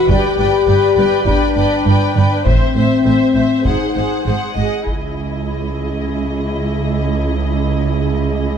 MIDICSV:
0, 0, Header, 1, 8, 480
1, 0, Start_track
1, 0, Tempo, 594059
1, 78, Time_signature, 4, 2, 24, 8
1, 6931, End_track
2, 0, Start_track
2, 0, Title_t, "Violin section"
2, 0, Program_c, 0, 48
2, 69, Note_on_c, 0, 79, 58
2, 307, Note_off_c, 0, 79, 0
2, 317, Note_on_c, 0, 79, 51
2, 540, Note_off_c, 0, 79, 0
2, 550, Note_on_c, 0, 79, 50
2, 782, Note_off_c, 0, 79, 0
2, 792, Note_on_c, 0, 79, 49
2, 1012, Note_off_c, 0, 79, 0
2, 1021, Note_on_c, 0, 79, 56
2, 1260, Note_off_c, 0, 79, 0
2, 1276, Note_on_c, 0, 79, 41
2, 1504, Note_off_c, 0, 79, 0
2, 1514, Note_on_c, 0, 79, 53
2, 1746, Note_off_c, 0, 79, 0
2, 1763, Note_on_c, 0, 79, 45
2, 1991, Note_off_c, 0, 79, 0
2, 1998, Note_on_c, 0, 76, 45
2, 2228, Note_off_c, 0, 76, 0
2, 2246, Note_on_c, 0, 76, 47
2, 2466, Note_off_c, 0, 76, 0
2, 2476, Note_on_c, 0, 76, 45
2, 2707, Note_off_c, 0, 76, 0
2, 2716, Note_on_c, 0, 76, 37
2, 2952, Note_off_c, 0, 76, 0
2, 2960, Note_on_c, 0, 78, 46
2, 3197, Note_off_c, 0, 78, 0
2, 3218, Note_on_c, 0, 78, 38
2, 3448, Note_off_c, 0, 78, 0
2, 3459, Note_on_c, 0, 78, 38
2, 3691, Note_off_c, 0, 78, 0
2, 3701, Note_on_c, 0, 78, 39
2, 3933, Note_off_c, 0, 78, 0
2, 3952, Note_on_c, 0, 75, 36
2, 6931, Note_off_c, 0, 75, 0
2, 6931, End_track
3, 0, Start_track
3, 0, Title_t, "Violin section"
3, 0, Program_c, 1, 48
3, 74, Note_on_c, 1, 74, 51
3, 305, Note_off_c, 1, 74, 0
3, 315, Note_on_c, 1, 74, 52
3, 533, Note_off_c, 1, 74, 0
3, 542, Note_on_c, 1, 74, 50
3, 763, Note_off_c, 1, 74, 0
3, 772, Note_on_c, 1, 74, 48
3, 995, Note_off_c, 1, 74, 0
3, 1004, Note_on_c, 1, 74, 52
3, 1249, Note_off_c, 1, 74, 0
3, 1259, Note_on_c, 1, 74, 49
3, 1493, Note_off_c, 1, 74, 0
3, 1502, Note_on_c, 1, 74, 47
3, 1739, Note_off_c, 1, 74, 0
3, 1749, Note_on_c, 1, 74, 43
3, 1982, Note_on_c, 1, 72, 39
3, 1984, Note_off_c, 1, 74, 0
3, 2218, Note_off_c, 1, 72, 0
3, 2228, Note_on_c, 1, 72, 45
3, 2449, Note_off_c, 1, 72, 0
3, 2459, Note_on_c, 1, 72, 40
3, 2697, Note_off_c, 1, 72, 0
3, 2707, Note_on_c, 1, 72, 43
3, 2939, Note_off_c, 1, 72, 0
3, 2948, Note_on_c, 1, 72, 43
3, 3172, Note_off_c, 1, 72, 0
3, 3182, Note_on_c, 1, 72, 41
3, 3423, Note_off_c, 1, 72, 0
3, 3433, Note_on_c, 1, 72, 44
3, 3665, Note_off_c, 1, 72, 0
3, 3679, Note_on_c, 1, 75, 46
3, 3914, Note_on_c, 1, 68, 29
3, 3922, Note_off_c, 1, 75, 0
3, 6931, Note_off_c, 1, 68, 0
3, 6931, End_track
4, 0, Start_track
4, 0, Title_t, "Viola section"
4, 0, Program_c, 2, 48
4, 77, Note_on_c, 2, 71, 47
4, 302, Note_off_c, 2, 71, 0
4, 312, Note_on_c, 2, 71, 42
4, 544, Note_off_c, 2, 71, 0
4, 553, Note_on_c, 2, 71, 49
4, 780, Note_off_c, 2, 71, 0
4, 789, Note_on_c, 2, 71, 54
4, 1020, Note_off_c, 2, 71, 0
4, 1030, Note_on_c, 2, 71, 45
4, 1265, Note_off_c, 2, 71, 0
4, 1281, Note_on_c, 2, 71, 46
4, 1510, Note_off_c, 2, 71, 0
4, 1523, Note_on_c, 2, 71, 44
4, 1744, Note_off_c, 2, 71, 0
4, 1754, Note_on_c, 2, 71, 42
4, 1987, Note_off_c, 2, 71, 0
4, 2001, Note_on_c, 2, 72, 44
4, 2228, Note_off_c, 2, 72, 0
4, 2238, Note_on_c, 2, 72, 39
4, 2468, Note_off_c, 2, 72, 0
4, 2477, Note_on_c, 2, 72, 42
4, 2710, Note_off_c, 2, 72, 0
4, 2719, Note_on_c, 2, 72, 40
4, 2953, Note_off_c, 2, 72, 0
4, 2957, Note_on_c, 2, 68, 43
4, 3196, Note_off_c, 2, 68, 0
4, 3207, Note_on_c, 2, 68, 40
4, 3433, Note_off_c, 2, 68, 0
4, 3442, Note_on_c, 2, 68, 36
4, 3682, Note_off_c, 2, 68, 0
4, 3694, Note_on_c, 2, 68, 38
4, 3920, Note_on_c, 2, 64, 28
4, 3930, Note_off_c, 2, 68, 0
4, 6931, Note_off_c, 2, 64, 0
4, 6931, End_track
5, 0, Start_track
5, 0, Title_t, "French horn section"
5, 0, Program_c, 3, 60
5, 75, Note_on_c, 3, 67, 97
5, 1030, Note_off_c, 3, 67, 0
5, 1032, Note_on_c, 3, 62, 83
5, 1743, Note_off_c, 3, 62, 0
5, 1753, Note_on_c, 3, 62, 65
5, 1986, Note_off_c, 3, 62, 0
5, 1987, Note_on_c, 3, 60, 75
5, 2933, Note_off_c, 3, 60, 0
5, 2960, Note_on_c, 3, 63, 59
5, 3446, Note_off_c, 3, 63, 0
5, 3945, Note_on_c, 3, 75, 37
5, 3947, Note_on_c, 3, 52, 36
5, 6931, Note_off_c, 3, 52, 0
5, 6931, Note_off_c, 3, 75, 0
5, 6931, End_track
6, 0, Start_track
6, 0, Title_t, "Cello section"
6, 0, Program_c, 4, 48
6, 71, Note_on_c, 4, 43, 66
6, 135, Note_off_c, 4, 43, 0
6, 312, Note_on_c, 4, 43, 46
6, 377, Note_off_c, 4, 43, 0
6, 548, Note_on_c, 4, 43, 50
6, 613, Note_off_c, 4, 43, 0
6, 785, Note_on_c, 4, 43, 50
6, 849, Note_off_c, 4, 43, 0
6, 1025, Note_on_c, 4, 43, 57
6, 1089, Note_off_c, 4, 43, 0
6, 1259, Note_on_c, 4, 43, 44
6, 1324, Note_off_c, 4, 43, 0
6, 1499, Note_on_c, 4, 43, 57
6, 1564, Note_off_c, 4, 43, 0
6, 1747, Note_on_c, 4, 43, 52
6, 1811, Note_off_c, 4, 43, 0
6, 1987, Note_on_c, 4, 45, 56
6, 2052, Note_off_c, 4, 45, 0
6, 2223, Note_on_c, 4, 45, 41
6, 2287, Note_off_c, 4, 45, 0
6, 2460, Note_on_c, 4, 45, 51
6, 2525, Note_off_c, 4, 45, 0
6, 2704, Note_on_c, 4, 45, 42
6, 2769, Note_off_c, 4, 45, 0
6, 2953, Note_on_c, 4, 44, 43
6, 3018, Note_off_c, 4, 44, 0
6, 3192, Note_on_c, 4, 44, 40
6, 3257, Note_off_c, 4, 44, 0
6, 3445, Note_on_c, 4, 44, 48
6, 3510, Note_off_c, 4, 44, 0
6, 3681, Note_on_c, 4, 44, 41
6, 3745, Note_off_c, 4, 44, 0
6, 3927, Note_on_c, 4, 37, 37
6, 6931, Note_off_c, 4, 37, 0
6, 6931, End_track
7, 0, Start_track
7, 0, Title_t, "Double bass section"
7, 0, Program_c, 5, 48
7, 70, Note_on_c, 5, 31, 61
7, 135, Note_off_c, 5, 31, 0
7, 311, Note_on_c, 5, 31, 49
7, 376, Note_off_c, 5, 31, 0
7, 552, Note_on_c, 5, 31, 51
7, 616, Note_off_c, 5, 31, 0
7, 787, Note_on_c, 5, 31, 52
7, 852, Note_off_c, 5, 31, 0
7, 1015, Note_on_c, 5, 31, 53
7, 1079, Note_off_c, 5, 31, 0
7, 1264, Note_on_c, 5, 31, 50
7, 1328, Note_off_c, 5, 31, 0
7, 1509, Note_on_c, 5, 31, 47
7, 1573, Note_off_c, 5, 31, 0
7, 1746, Note_on_c, 5, 31, 54
7, 1811, Note_off_c, 5, 31, 0
7, 1986, Note_on_c, 5, 33, 53
7, 2051, Note_off_c, 5, 33, 0
7, 2227, Note_on_c, 5, 33, 47
7, 2292, Note_off_c, 5, 33, 0
7, 2466, Note_on_c, 5, 33, 45
7, 2531, Note_off_c, 5, 33, 0
7, 2704, Note_on_c, 5, 33, 42
7, 2769, Note_off_c, 5, 33, 0
7, 2963, Note_on_c, 5, 32, 47
7, 3027, Note_off_c, 5, 32, 0
7, 3208, Note_on_c, 5, 32, 43
7, 3273, Note_off_c, 5, 32, 0
7, 3447, Note_on_c, 5, 32, 42
7, 3511, Note_off_c, 5, 32, 0
7, 3692, Note_on_c, 5, 32, 44
7, 3757, Note_off_c, 5, 32, 0
7, 3921, Note_on_c, 5, 37, 35
7, 6931, Note_off_c, 5, 37, 0
7, 6931, End_track
8, 0, Start_track
8, 0, Title_t, "Taiko and cinematic ensemble drums"
8, 73, Note_on_c, 9, 41, 76
8, 154, Note_off_c, 9, 41, 0
8, 1031, Note_on_c, 9, 41, 61
8, 1111, Note_off_c, 9, 41, 0
8, 1987, Note_on_c, 9, 41, 66
8, 2068, Note_off_c, 9, 41, 0
8, 2950, Note_on_c, 9, 41, 59
8, 3031, Note_off_c, 9, 41, 0
8, 3932, Note_on_c, 9, 41, 35
8, 4013, Note_off_c, 9, 41, 0
8, 6931, End_track
0, 0, End_of_file